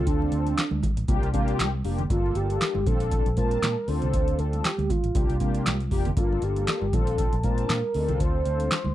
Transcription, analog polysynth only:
Already playing: C4 D4 F4 A4
1.08 A#3 D4 F4 G4
1.33 A#3 D4 F4 G4
1.84 A#3 D4 F4 G4
2.10 A#3 D4 F4 A4
2.86 C4 D4 F4 A4
3.37 C4 D4 F4 A5
3.88 C4 D4 F4 A4
5.15 A#3 D4 F4 G4
5.40 A#3 D4 F4 G4
5.91 A#3 D4 F4 G4
6.16 A#3 D4 F4 A4
6.93 C4 D4 F4 A4
7.44 C4 D4 F4 A5
7.95 C4 D4 D#4 A4
8.01 F4

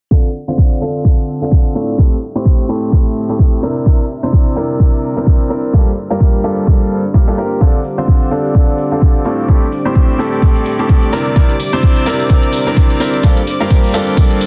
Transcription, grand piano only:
0.11 D3 C4 D4 F4 A4
0.48 D3 C4 D4 F4 C5
0.81 D3 C4 D4 F4 A4
1.42 D3 C4 D4 F4 A4
1.75 A2 C4 D4 F4 A4
1.99 A2 C4 E4 G4 A4
2.35 A2 C4 E4 G4 C5
2.69 A2 C4 E4 G4 A4
3.29 A2 C4 E4 G4 A4
3.63 C3 C4 D4 E4 A#4
3.86 C3 C4 D4 E4 A#4
4.23 C3 C4 D4 E4 C5
4.56 C3 C4 D4 E4 A#4
5.17 C3 C4 D4 E4 A#4
5.50 C4 D4 E4 A#4
5.74 G2 A#3 F4 G4 A4
6.10 G2 A#3 F4 G4 A#4
6.44 G2 A#3 F4 G4 A4
7.14 G2 A#3 F4 G4 A#4
7.28 G2 A#3 F4 G4 A4
7.38 A#3 F4 G4 A#4
7.61 D3 C4 D4 F4 A4
7.98 D3 C4 D4 F4 C5
8.31 D3 C4 D4 F4 A4
8.92 D3 C4 D4 F4 A4
9.25 A2 C4 D4 F4 A4
9.48 A2 C4 E4 G4 A4
9.85 A2 C4 E4 G4 C5
10.19 A2 C4 E4 G4 A4
10.79 A2 C4 E4 G4 A4
11.13 C3 C4 D4 E4 A#4
11.36 C3 C4 D4 E4 A#4
11.73 C3 C4 D4 E4 C5
12.06 C3 C4 D4 E4 A#4
12.67 C3 C4 D4 E4 A#4
13.00 C4 D4 E4 A#4
13.24 G2 A#3 F4 G4 A4
13.60 G2 A#3 F4 G4 A#4
13.94 G2 A#3 F4 G4 A4

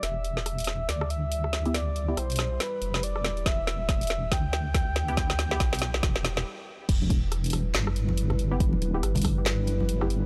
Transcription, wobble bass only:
0.03 E1
0.89 D2
2.17 B1
2.82 F1
3.26 E1
3.46 E1
4.32 D2
5.60 B1
6.03 E1
6.89 E1
7.75 G1
9.03 G1
9.89 G1

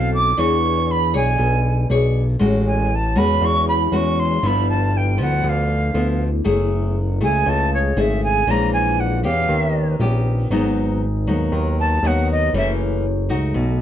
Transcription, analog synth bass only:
Already playing: B1
0.38 E2
1.14 B1
1.39 B1
1.90 B1
2.41 A1
3.16 E2
3.41 E2
3.92 E2
4.43 G1
5.19 D2
5.44 D2
5.94 D2
6.46 F#1
7.21 C#2
7.46 C#2
7.97 G#1
8.47 A#1
9.24 E2
9.49 D#2
10.00 A#1
10.51 G#1
11.27 D#2
11.52 D#2
12.03 D#2
12.54 F#1
13.30 C#2
13.56 B1

